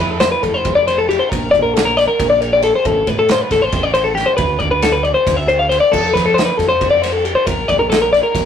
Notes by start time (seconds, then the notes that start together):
Already playing: E4
0.00 F2 B4
0.11 A4
0.20 C5, snare, ride
0.32 B4
0.43 F1 A4, kick, ride
0.54 C5
0.65 F1, kick, ride
0.75 D5
0.87 C5, ride
0.98 A4
1.09 G4, ride
1.19 C5
1.29 A#1 A#4, kick, ride
1.51 A#1 D5, kick, ride
1.62 A#4
1.74 A4, snare, ride
1.85 A#4
1.97 D5, snare, ride
2.08 A#4
2.20 A#1, kick, ride
2.30 D5
2.41 A#4, ride
2.53 D5
2.62 A4, ride
2.75 C5
2.85 A1 A4, kick, ride
3.07 A2 B4, kick, ride
3.19 A4
3.29 C5, snare, ride
3.41 B4
3.51 A1 A4, kick, snare, ride
3.62 C5
3.72 A1, kick, ride
3.83 D5
3.94 C5, ride
4.04 A4
4.15 G4, snare, ride
4.26 C5
4.37 D2 B4, kick, ride
4.59 D2 D5, kick, ride
4.71 B4
4.82 A4, snare, ride
4.92 B4
5.03 D5, ride
5.14 C5
5.27 D2, kick, snare, ride
5.37 E5
5.48 C5, ride
5.59 F5
5.69 C5, ride
5.80 D5
5.92 F2 A4, kick, crash
6.14 F3 B4, kick, ride
6.18 snare
6.26 A4
6.34 C5, ride
6.39 snare
6.45 B4
6.58 F2 A4, kick, snare, ride
6.69 C5
6.81 F2, kick, ride
6.91 D5
7.02 C5, snare, ride
7.13 A4
7.25 G4, ride
7.35 C5
7.46 A#1 A#4, kick, ride
7.68 A#1 D5, kick, ride
7.79 A#4
7.90 A4, snare, ride
8.02 A#4
8.13 D5, snare, ride
8.23 A#4
8.35 A#1, kick, snare, ride